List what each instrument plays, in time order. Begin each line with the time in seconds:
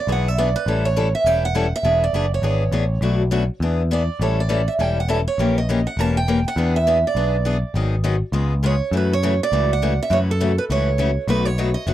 0.07 picked electric bass B1, steel-string acoustic guitar E3 B3 D4 G#4
0.12 steel-string acoustic guitar F#5
0.28 steel-string acoustic guitar E5
0.38 steel-string acoustic guitar E3 B3 D4 G#4 D5
0.56 steel-string acoustic guitar B4
0.66 picked electric bass A1, steel-string acoustic guitar E3 G3 C#4 E4 A4
0.85 steel-string acoustic guitar C#5
0.96 steel-string acoustic guitar E3 G3 C#4 E4 A4
1.15 steel-string acoustic guitar E5
1.24 picked electric bass E1, steel-string acoustic guitar E3 G3 C#4 E4 A4 G5
1.45 steel-string acoustic guitar F#5
1.55 steel-string acoustic guitar E3 G3 C#4 E4 A4
1.76 steel-string acoustic guitar E5
1.83 picked electric bass E1, steel-string acoustic guitar E3 B3 D4 G#4
2.04 steel-string acoustic guitar D5
2.13 picked electric bass F#1, steel-string acoustic guitar E3 B3 D4 G#4
2.34 steel-string acoustic guitar C#5
2.42 picked electric bass G#1, steel-string acoustic guitar E3 B3 D4 G#4
2.72 picked electric bass A1, steel-string acoustic guitar E3 B3 D4 G#4
3.01 picked electric bass B1, steel-string acoustic guitar B2 F#3 A3 D4 F#4
3.31 steel-string acoustic guitar B2 F#3 A3 D4 F#4
3.60 picked electric bass E2, steel-string acoustic guitar E3 B3 D4 G#4
3.91 steel-string acoustic guitar E3 B3 D4 G#4 D5
4.19 picked electric bass A1, steel-string acoustic guitar E3 G3 C#4 E4 A4 C#5
4.40 steel-string acoustic guitar D5
4.49 steel-string acoustic guitar E3 G3 C#4 E4 A4
4.68 steel-string acoustic guitar E5
4.79 picked electric bass E1, steel-string acoustic guitar E3 G3 C#4 E4 A4 G5
5.00 steel-string acoustic guitar F#5
5.08 steel-string acoustic guitar E3 G3 C#4 E4 A4 E5
5.28 steel-string acoustic guitar C#5
5.38 picked electric bass A#1, steel-string acoustic guitar E3 A#3 C#4 G4 A#4
5.58 steel-string acoustic guitar D#5
5.69 steel-string acoustic guitar E3 A#3 C#4 G4 A#4
5.87 steel-string acoustic guitar F#5
5.97 picked electric bass E1, steel-string acoustic guitar E3 A#3 C#4 G4 A#4 A5
6.17 steel-string acoustic guitar G5
6.28 steel-string acoustic guitar E3 A#3 C#4 G4 A#4
6.48 steel-string acoustic guitar F#5
6.56 picked electric bass E2, steel-string acoustic guitar E3 B3 D4 G#4
6.76 steel-string acoustic guitar E5
6.87 steel-string acoustic guitar E3 B3 D4 G#4
7.07 steel-string acoustic guitar D5
7.15 picked electric bass B1, steel-string acoustic guitar E3 B3 D4 G#4
7.45 steel-string acoustic guitar E3 B3 D4 G#4
7.74 picked electric bass G#1, steel-string acoustic guitar D#3 F#3 B3 D#4 G#4
8.04 steel-string acoustic guitar D#3 F#3 B3 D#4 G#4
8.32 picked electric bass C#2, steel-string acoustic guitar C#3 G#3 B3 F4 G#4
8.63 steel-string acoustic guitar C#3 G#3 B3 F4 G#4 C#5
8.91 picked electric bass F#2, steel-string acoustic guitar C#3 E3 A3 C#4 F#4
8.97 steel-string acoustic guitar B4
9.13 steel-string acoustic guitar C#5
9.23 steel-string acoustic guitar C#3 E3 A3 C#4 F#4
9.43 steel-string acoustic guitar D5
9.52 picked electric bass C#2, steel-string acoustic guitar C#3 E3 A3 C#4 F#4
9.73 steel-string acoustic guitar F#5
9.82 steel-string acoustic guitar C#3 E3 A3 C#4 F#4
10.03 steel-string acoustic guitar E5
10.10 picked electric bass F#2, steel-string acoustic guitar C#3 E3 A3 C#4 F#4 C#5
10.31 steel-string acoustic guitar A4
10.41 steel-string acoustic guitar C#3 E3 A3 C#4 F#4
10.58 steel-string acoustic guitar B4
10.70 picked electric bass C#2, steel-string acoustic guitar C#3 E3 A3 C#4 F#4 C#5
10.98 steel-string acoustic guitar C#3 E3 A3 C#4 F#4
11.28 picked electric bass B1, steel-string acoustic guitar B2 F#3 A3 D#4 F#4 B4
11.45 steel-string acoustic guitar C#5
11.58 steel-string acoustic guitar B2 F#3 A3 D#4 F#4
11.74 steel-string acoustic guitar D#5
11.87 picked electric bass F#1, steel-string acoustic guitar B2 F#3 A3 D#4 F#4 B4